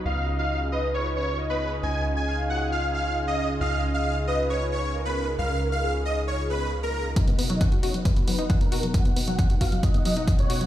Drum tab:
HH |----------------|----------------|----------------|----------------|
BD |----------------|----------------|----------------|----------------|

HH |xxoxxxoxxxoxxxox|xxoxxxoxxxoxxxox|
BD |o---o---o---o---|o---o-o-o---o---|